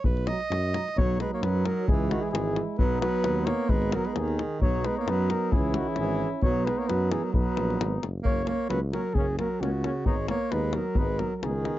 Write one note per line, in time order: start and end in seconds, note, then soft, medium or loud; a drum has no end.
0.04 0.30 B1 medium
0.04 0.29 B4 medium
0.04 davul low loud
0.17 davul high soft
0.27 0.39 F#3 medium
0.27 0.37 D#4 medium
0.27 0.96 D#5 loud
0.27 davul high medium
0.40 davul high soft
0.50 0.75 F#2 loud
0.50 davul high medium
0.64 davul high soft
0.74 0.85 F#3 soft
0.74 0.83 D#4 medium
0.74 davul high medium
0.88 davul high soft
0.96 1.21 B1 medium
0.96 1.90 F#3 medium
0.96 1.19 F#3 loud
0.96 1.91 D#4 medium
0.96 1.18 C#5 loud
0.96 davul low loud
1.20 1.30 G#3 medium
1.20 1.31 B4 loud
1.20 davul high medium
1.33 1.46 A#3 medium
1.33 1.44 C#5 medium
1.41 1.67 F#2 medium
1.41 1.67 F#3 medium
1.41 1.68 B4 loud
1.41 davul high medium
1.66 1.88 F#3 medium
1.66 1.88 A#4 loud
1.66 davul high medium
1.88 2.13 C#2 medium
1.88 2.13 E3 medium
1.88 2.79 G#3 medium
1.88 2.79 E4 medium
1.88 2.12 G#4 loud
1.88 davul low loud
2.10 2.25 D#3 medium
2.10 2.23 F#4 loud
2.10 davul high medium
2.22 2.33 E3 medium
2.22 2.31 G#4 loud
2.32 2.58 G#1 medium
2.32 2.66 E3 medium
2.32 2.65 G#4 loud
2.32 davul high medium
2.56 davul high medium
2.78 3.04 B1 medium
2.78 3.00 F#3 loud
2.78 3.66 B3 medium
2.78 3.66 D#4 medium
2.78 2.99 B4 loud
2.78 davul low loud
3.00 3.49 F#3 loud
3.00 3.47 B4 loud
3.00 davul high medium
3.24 3.50 D#2 medium
3.24 davul high medium
3.45 3.72 A#3 medium
3.45 3.71 C#5 loud
3.45 davul high medium
3.69 3.95 G#1 loud
3.69 3.97 G#3 loud
3.69 4.42 B3 medium
3.69 4.41 D#4 medium
3.69 3.96 B4 loud
3.69 davul low loud
3.82 davul high soft
3.92 4.09 F#3 medium
3.92 4.06 A#4 loud
3.92 davul high medium
4.04 4.21 G#3 medium
4.04 4.18 B4 medium
4.04 davul high soft
4.15 4.40 D#2 medium
4.15 4.61 G#4 medium
4.15 davul high medium
4.20 4.62 D#3 medium
4.28 davul high soft
4.39 davul high medium
4.60 4.86 B1 loud
4.60 4.89 F#3 medium
4.60 5.54 B3 medium
4.60 5.53 D#4 medium
4.60 4.87 C#5 loud
4.60 davul low loud
4.84 4.97 G#3 medium
4.84 4.96 B4 loud
4.84 davul high medium
4.97 5.12 A#3 medium
4.97 5.10 C#5 medium
5.06 5.31 F#2 medium
5.06 5.33 B4 loud
5.06 davul high medium
5.10 5.32 F#3 medium
5.30 5.56 F#3 medium
5.30 5.54 A#4 medium
5.30 davul high medium
5.52 5.78 C#2 medium
5.52 5.80 E3 medium
5.52 6.45 C#4 medium
5.52 6.43 E4 medium
5.52 5.77 G#4 medium
5.52 davul low loud
5.74 5.90 F#4 medium
5.74 davul high medium
5.78 5.91 D#3 medium
5.88 5.98 E3 medium
5.88 5.97 G#4 medium
5.96 6.23 G#1 medium
5.96 6.30 E3 medium
5.96 6.30 G#4 medium
5.96 davul high medium
6.42 6.68 B1 medium
6.42 6.69 F#3 loud
6.42 7.34 B3 medium
6.42 7.30 D#4 medium
6.42 6.67 C#5 loud
6.42 davul low loud
6.65 6.81 G#3 medium
6.65 6.80 B4 loud
6.65 davul high medium
6.78 6.91 A#3 medium
6.78 6.89 C#5 medium
6.88 7.14 F#2 medium
6.88 7.13 F#3 medium
6.88 7.13 B4 medium
6.88 davul high medium
7.11 7.25 E3 medium
7.11 7.25 G#4 loud
7.11 davul high medium
7.23 7.34 F#3 medium
7.23 7.33 A#4 medium
7.33 7.46 B1 medium
7.33 7.98 F#3 medium
7.33 8.05 B3 medium
7.33 8.05 D#4 medium
7.33 7.97 B4 medium
7.33 davul low loud
7.57 7.77 A#1 loud
7.57 davul high medium
7.70 davul high soft
7.80 8.00 G#1 medium
7.80 davul high medium
8.02 8.22 F#1 medium
8.02 davul high medium
8.23 8.49 F#1 medium
8.23 8.44 A#3 loud
8.23 8.34 A#3 medium
8.23 8.34 C#4 medium
8.23 8.46 C#5 loud
8.23 davul low medium
8.45 8.67 A#3 medium
8.45 8.57 A#3 medium
8.45 8.57 C#4 soft
8.45 davul high medium
8.49 8.69 C#5 loud
8.69 8.95 C#2 loud
8.69 8.80 F#3 medium
8.69 8.79 A#3 medium
8.69 8.79 C#4 medium
8.69 8.80 B4 loud
8.69 davul high medium
8.92 9.15 F#3 medium
8.92 9.04 A#3 soft
8.92 9.02 C#4 medium
8.92 9.16 A#4 loud
8.92 davul high medium
9.14 9.40 F#1 medium
9.14 9.37 C#3 medium
9.14 9.26 A#3 medium
9.14 9.26 C#4 medium
9.14 9.37 G#4 loud
9.14 davul low medium
9.39 9.63 F#3 medium
9.39 9.48 A#3 medium
9.39 9.48 C#4 medium
9.39 9.62 A#4 medium
9.39 davul high medium
9.61 9.86 C#2 loud
9.61 10.07 C#3 medium
9.61 9.70 A#3 medium
9.61 9.70 C#4 medium
9.61 10.08 F#4 medium
9.61 davul high medium
9.84 9.93 A#3 medium
9.84 9.93 C#4 medium
9.84 davul high medium
10.05 10.31 G#1 medium
10.05 10.29 G#3 medium
10.05 10.15 B3 medium
10.05 10.15 D#4 medium
10.05 10.29 C#5 medium
10.05 davul low medium
10.28 10.55 A#3 medium
10.28 10.38 B3 medium
10.28 10.38 D#4 medium
10.28 10.53 C#5 loud
10.28 davul high medium
10.51 10.77 D#2 loud
10.51 10.78 G#3 medium
10.51 10.60 B3 medium
10.51 10.61 D#4 medium
10.51 10.76 B4 loud
10.51 davul high medium
10.73 11.02 F#3 medium
10.73 10.83 B3 medium
10.73 10.83 D#4 medium
10.73 10.99 A#4 medium
10.73 davul high medium
10.95 11.22 G#1 medium
10.95 11.06 B3 medium
10.95 11.06 D#4 medium
10.95 11.21 B4 loud
10.95 davul low loud
11.00 11.22 G#3 medium
11.19 11.36 F#3 medium
11.19 11.29 B3 medium
11.19 11.29 D#4 medium
11.19 11.36 A#4 medium
11.19 davul high medium
11.36 11.45 F#3 soft
11.36 11.44 A#4 medium
11.42 11.67 C#2 medium
11.42 11.79 D#3 medium
11.42 11.52 B3 medium
11.42 11.52 D#4 medium
11.42 11.79 G#4 loud
11.42 davul high medium
11.65 11.75 B3 soft
11.65 11.74 D#4 medium
11.65 davul high medium